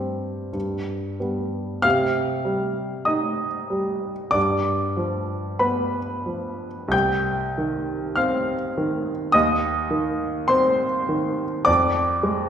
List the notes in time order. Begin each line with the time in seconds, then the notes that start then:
Already playing: G2 G3 C4 G4
0.53 G2
1.20 G3 B3
1.82 C3 F5 F6
2.45 G3
3.05 D#4 D#5 D#6
3.70 G3
4.31 G2 D5 D6
4.97 F3
5.59 B3 B4 B5
6.26 F3
6.88 C2 G6
6.93 G5
7.58 D#3
8.16 C4 F5 F6
8.78 D#3
9.32 D#2 D#5 D#6
9.91 D#3
10.48 C4 C5 C6
11.09 D#3
11.65 F2 D5 D6
12.23 G#3